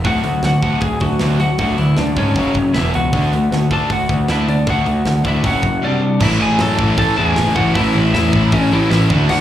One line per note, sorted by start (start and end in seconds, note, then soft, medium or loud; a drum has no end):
0.04 0.19 D2 loud
0.04 0.23 D3 medium
0.04 0.23 F#3 medium
0.04 0.24 A3 medium
0.04 0.24 D4 medium
0.04 0.42 F#4 medium
0.04 0.44 F#5 loud
0.04 kick loud
0.04 open hi-hat medium
0.24 0.38 D2 medium
0.24 0.42 D3 medium
0.24 0.42 F#3 medium
0.24 0.42 A3 medium
0.24 open hi-hat medium
0.43 0.72 D2 medium
0.43 0.61 D3 medium
0.43 0.62 F#3 medium
0.43 0.62 A3 medium
0.43 0.62 F#4 medium
0.43 0.61 F#5 medium
0.43 snare loud
0.43 open hi-hat medium
0.62 0.81 D3 medium
0.62 0.81 F#3 medium
0.62 0.82 A3 loud
0.62 0.82 D4 medium
0.62 0.80 F#4 medium
0.62 0.81 F#5 medium
0.62 kick medium
0.62 open hi-hat soft
0.81 0.96 D2 loud
0.81 1.00 D3 medium
0.81 1.00 F#3 medium
0.81 1.00 A3 medium
0.81 0.99 G#4 medium
0.81 1.01 G#5 medium
0.81 kick loud
0.81 open hi-hat medium
1.00 1.16 D2 medium
1.00 1.20 D3 medium
1.00 1.20 F#3 medium
1.00 1.19 A3 medium
1.00 1.38 F#4 medium
1.00 1.39 F#5 medium
1.00 kick medium
1.00 open hi-hat medium
1.19 1.49 D2 medium
1.19 1.39 D3 medium
1.19 1.39 F#3 medium
1.19 1.40 A3 loud
1.19 1.40 D4 medium
1.19 snare loud
1.19 open hi-hat medium
1.40 1.58 D3 medium
1.40 1.58 F#3 medium
1.40 1.58 A3 medium
1.40 1.58 F#4 medium
1.40 1.58 F#5 medium
1.40 open hi-hat medium
1.58 1.74 D2 medium
1.58 1.78 D3 medium
1.58 1.78 F#3 medium
1.58 1.79 A3 loud
1.58 1.78 D4 loud
1.58 1.77 F#4 medium
1.58 1.77 F#5 loud
1.58 kick loud
1.58 open hi-hat medium
1.77 1.93 D2 medium
1.77 1.96 D3 medium
1.77 1.97 F#3 medium
1.77 1.97 A3 medium
1.77 1.96 E4 medium
1.77 1.97 E5 medium
1.77 open hi-hat medium
1.96 2.12 D2 medium
1.96 2.15 D3 medium
1.96 2.15 F#3 medium
1.96 2.16 A3 medium
1.96 2.16 D4 medium
1.96 2.17 D5 medium
1.96 snare medium
1.96 open hi-hat medium
2.16 2.31 G#2 medium
2.16 2.35 D3 medium
2.16 2.35 F#3 medium
2.16 2.36 A3 medium
2.16 2.71 C#4 medium
2.16 2.36 D4 medium
2.16 2.77 C#5 medium
2.16 kick medium
2.16 open hi-hat medium
2.35 2.50 F#1 loud
2.35 2.54 F#2 medium
2.35 2.55 C#3 loud
2.35 2.55 F#3 medium
2.35 2.55 C#4 medium
2.35 2.56 F#4 medium
2.35 kick loud
2.35 open hi-hat medium
2.54 2.70 F#1 medium
2.54 2.73 F#2 medium
2.54 2.73 C#3 medium
2.54 2.73 F#3 medium
2.54 2.74 C#4 medium
2.54 kick medium
2.54 open hi-hat medium
2.74 2.90 E1 medium
2.74 2.93 E2 medium
2.74 2.94 B2 medium
2.74 2.93 E3 medium
2.74 2.94 B3 loud
2.74 2.92 E4 medium
2.74 2.94 E4 medium
2.74 2.95 E5 medium
2.74 snare loud
2.74 open hi-hat medium
2.94 3.09 C#2 medium
2.94 3.12 E2 medium
2.94 3.12 B2 medium
2.94 3.12 E3 medium
2.94 3.12 B3 medium
2.94 3.68 F#4 medium
2.94 3.74 F#5 medium
2.94 open hi-hat medium
3.13 3.27 D2 loud
3.13 3.31 D3 medium
3.13 3.32 A3 loud
3.13 3.32 D4 loud
3.13 kick loud
3.13 open hi-hat medium
3.32 3.47 D2 medium
3.32 3.50 D3 medium
3.32 3.51 A3 medium
3.32 open hi-hat medium
3.51 3.80 D2 medium
3.51 3.70 D3 medium
3.51 3.70 A3 medium
3.51 snare loud
3.51 open hi-hat medium
3.71 3.89 D3 loud
3.71 3.90 A3 medium
3.71 3.90 D4 loud
3.71 3.90 A4 medium
3.71 3.92 A5 medium
3.71 kick medium
3.71 open hi-hat soft
3.90 4.05 D2 medium
3.90 4.08 D3 medium
3.90 4.08 A3 medium
3.90 4.27 F#4 medium
3.90 4.31 F#5 loud
3.90 kick loud
3.90 open hi-hat medium
4.09 4.24 D2 medium
4.09 4.27 D3 medium
4.09 4.27 A3 medium
4.09 kick medium
4.09 open hi-hat soft
4.28 4.58 D2 medium
4.28 4.47 D3 medium
4.28 4.47 A3 medium
4.28 4.48 D4 medium
4.28 4.47 E4 medium
4.28 4.50 E5 medium
4.28 snare loud
4.28 open hi-hat medium
4.48 4.66 D3 medium
4.48 4.66 A3 medium
4.48 4.66 D4 medium
4.48 4.69 D5 medium
4.48 open hi-hat medium
4.67 4.82 D2 loud
4.67 4.85 D3 medium
4.67 4.86 A3 medium
4.67 4.86 D4 loud
4.67 5.22 F#4 medium
4.67 5.28 F#5 loud
4.67 kick loud
4.67 open hi-hat medium
4.86 5.01 D2 medium
4.86 5.04 D3 medium
4.86 5.05 A3 medium
4.86 open hi-hat medium
5.05 5.21 D2 medium
5.05 5.23 D3 medium
5.05 5.24 A3 medium
5.05 snare loud
5.05 open hi-hat medium
5.24 5.39 D2 medium
5.24 5.43 D3 medium
5.24 5.43 A3 medium
5.24 5.44 D4 loud
5.24 5.44 E4 medium
5.24 kick medium
5.24 open hi-hat medium
5.28 5.47 E5 medium
5.44 5.58 F#1 loud
5.44 5.63 F#2 medium
5.44 5.63 C#3 loud
5.44 5.62 F#3 medium
5.44 5.63 C#4 loud
5.44 5.63 F#4 loud
5.44 6.00 F#4 medium
5.44 kick loud
5.44 open hi-hat medium
5.48 6.00 F#5 medium
5.62 5.78 F#1 medium
5.62 5.82 F#2 medium
5.62 5.82 C#3 medium
5.62 5.81 F#3 medium
5.62 5.81 C#4 medium
5.62 kick medium
5.62 open hi-hat medium
5.82 6.00 C3 loud
5.82 6.01 G3 medium
5.82 6.01 C4 loud
5.82 6.24 D5 medium
5.86 6.21 D4 medium
6.01 6.19 C3 medium
6.01 6.20 G3 medium
6.20 6.37 A1 loud
6.20 7.16 A2 loud
6.20 6.40 A2 loud
6.20 7.16 E3 medium
6.20 6.41 E3 loud
6.20 7.18 A3 loud
6.20 6.41 A3 loud
6.20 7.16 C#4 loud
6.20 7.15 E4 loud
6.20 6.42 E5 loud
6.20 kick loud
6.20 crash loud
6.24 6.41 E4 medium
6.40 6.56 A1 medium
6.40 6.59 A2 medium
6.40 6.60 E3 medium
6.40 6.61 A3 medium
6.40 6.60 G#4 medium
6.40 6.61 G#5 medium
6.59 6.76 F#2 medium
6.59 6.77 A2 loud
6.59 6.78 E3 loud
6.59 6.79 A3 loud
6.59 6.97 A4 medium
6.59 6.97 A5 medium
6.59 snare loud
6.59 open hi-hat medium
6.79 6.95 A1 medium
6.79 6.96 A2 medium
6.79 6.97 E3 medium
6.79 6.99 A3 medium
6.79 kick medium
6.97 7.16 A2 loud
6.97 7.14 A2 loud
6.97 7.17 E3 loud
6.97 7.18 A3 loud
6.97 7.17 A4 medium
6.97 7.16 A5 medium
6.97 kick loud
6.97 open hi-hat medium
7.16 7.34 E2 medium
7.16 7.35 A2 loud
7.16 7.36 E3 loud
7.16 7.35 E3 medium
7.16 7.36 A3 medium
7.16 7.37 A3 loud
7.16 7.36 C#4 medium
7.16 7.35 E4 medium
7.16 7.54 G#4 medium
7.16 7.54 G#5 loud
7.20 7.34 A2 medium
7.35 7.53 F#1 medium
7.35 7.73 A2 medium
7.35 7.55 A2 loud
7.35 7.74 E3 medium
7.35 7.56 E3 loud
7.35 7.76 A3 medium
7.35 7.57 A3 loud
7.35 7.75 C#4 loud
7.35 7.75 E4 loud
7.35 snare loud
7.35 open hi-hat medium
7.55 7.72 A1 medium
7.55 7.74 A2 loud
7.55 7.75 E3 loud
7.55 7.75 E3 medium
7.55 7.77 A3 medium
7.55 7.77 A3 loud
7.55 7.75 F#4 medium
7.55 7.74 F#5 medium
7.55 kick medium
7.59 7.73 A2 medium
7.74 7.92 A1 loud
7.74 8.70 A2 loud
7.74 7.94 A2 loud
7.74 8.71 E3 loud
7.74 7.95 E3 loud
7.74 8.73 A3 loud
7.74 7.96 A3 loud
7.74 8.71 C#4 loud
7.74 8.12 E4 medium
7.74 8.70 E4 loud
7.74 8.12 E5 loud
7.74 kick loud
7.74 open hi-hat medium
7.95 8.11 A1 medium
7.95 8.13 A2 medium
7.95 8.14 E3 loud
7.95 8.15 A3 medium
8.14 8.30 E2 loud
8.14 8.33 A2 medium
8.14 8.34 E3 loud
8.14 8.35 A3 loud
8.14 8.50 E4 medium
8.14 8.54 E5 medium
8.14 snare loud
8.14 open hi-hat medium
8.33 8.49 A1 loud
8.33 8.52 A2 medium
8.33 8.53 E3 loud
8.33 8.54 A3 medium
8.33 kick medium
8.52 8.68 A1 loud
8.52 8.71 A2 loud
8.52 8.72 E3 loud
8.52 8.74 A3 loud
8.52 8.71 C#4 medium
8.52 8.73 C#5 medium
8.52 kick loud
8.52 open hi-hat medium
8.71 8.88 A1 medium
8.71 8.90 A2 medium
8.71 8.89 A2 medium
8.71 8.91 E3 loud
8.71 8.90 E3 medium
8.71 8.91 A3 medium
8.71 8.92 A3 medium
8.71 8.90 C#4 medium
8.71 8.90 E4 loud
8.71 8.90 E4 medium
8.71 8.89 E5 medium
8.90 9.07 A1 medium
8.90 9.09 A2 medium
8.90 9.09 A2 loud
8.90 9.09 E3 medium
8.90 9.10 E3 loud
8.90 9.11 A3 medium
8.90 9.12 A3 loud
8.90 9.10 C#4 medium
8.90 9.27 E4 medium
8.90 9.29 E5 loud
8.90 snare loud
8.90 open hi-hat medium
8.94 9.11 E4 medium
9.09 9.26 D2 medium
9.09 9.41 D3 loud
9.09 9.29 D3 loud
9.09 9.41 A3 loud
9.09 9.31 A3 loud
9.09 9.41 D4 loud
9.09 9.31 D4 loud
9.09 9.41 F#4 loud
9.09 kick loud
9.29 9.41 D2 loud
9.29 9.41 D3 loud
9.29 9.41 A3 loud
9.29 9.41 D4 loud
9.29 9.41 F#4 medium
9.29 9.41 F#5 loud
9.29 crash loud